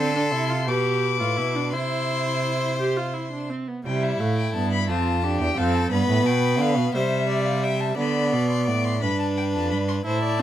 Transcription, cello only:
0.00 0.34 D3 medium
0.32 0.69 C3 medium
0.67 1.22 B2 medium
1.20 1.39 A2 medium
1.38 1.74 B2 medium
1.73 3.50 C3 medium
3.86 4.18 C3 medium
4.20 4.54 A2 medium
4.55 4.91 G2 medium
4.89 5.40 F2 medium
5.41 5.48 E2 medium
5.58 5.91 F2 medium
5.92 6.08 G2 medium
6.09 6.25 A2 medium
6.26 6.61 B2 medium
6.60 6.79 D3 medium
6.77 6.94 B2 medium
6.94 7.96 C3 medium
7.98 8.35 D3 medium
8.33 8.70 B2 medium
8.68 9.05 A2 medium
9.03 9.56 G2 medium
9.55 9.73 F2 medium
9.72 10.05 G2 medium
10.06 10.42 A2 medium

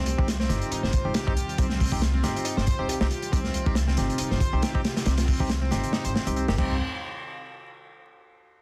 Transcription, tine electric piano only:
0.18 0.27 C4 medium
0.18 0.27 D#4 medium
0.18 0.27 G4 loud
0.49 0.91 C4 medium
0.49 0.91 D#4 medium
0.49 0.91 G4 loud
1.05 1.24 C4 medium
1.05 1.24 D#4 medium
1.05 1.24 G4 medium
1.27 1.32 C4 loud
1.27 1.32 D#4 medium
1.27 1.32 G4 loud
1.58 1.65 C4 medium
1.58 1.65 D#4 medium
1.58 1.65 G4 medium
1.92 2.01 C4 medium
1.92 2.01 D#4 medium
1.92 2.01 G4 loud
2.24 2.65 C4 medium
2.24 2.65 D#4 medium
2.24 2.65 G4 loud
2.79 2.98 C4 medium
2.79 2.98 D#4 medium
2.79 2.98 G4 medium
3.01 3.06 C4 loud
3.01 3.06 D#4 medium
3.01 3.06 G4 loud
3.32 3.39 C4 medium
3.32 3.39 D#4 medium
3.32 3.39 G4 medium
3.66 3.75 C4 medium
3.66 3.75 D#4 medium
3.66 3.75 G4 loud
3.98 4.39 C4 medium
3.98 4.39 D#4 medium
3.98 4.39 G4 loud
4.53 4.72 C4 medium
4.53 4.72 D#4 medium
4.53 4.72 G4 medium
4.75 4.80 C4 loud
4.75 4.80 D#4 medium
4.75 4.80 G4 loud
5.06 5.13 C4 medium
5.06 5.13 D#4 medium
5.06 5.13 G4 medium
5.40 5.49 C4 medium
5.40 5.49 D#4 medium
5.40 5.49 G4 loud
5.71 6.12 C4 medium
5.71 6.13 D#4 medium
5.71 6.12 G4 loud
6.27 6.46 C4 medium
6.27 6.46 D#4 medium
6.27 6.46 G4 loud
6.49 6.54 C4 loud
6.49 6.54 D#4 medium
6.49 6.54 G4 loud
6.58 6.75 C4 medium
6.58 6.75 D#4 medium
6.58 6.75 G4 medium

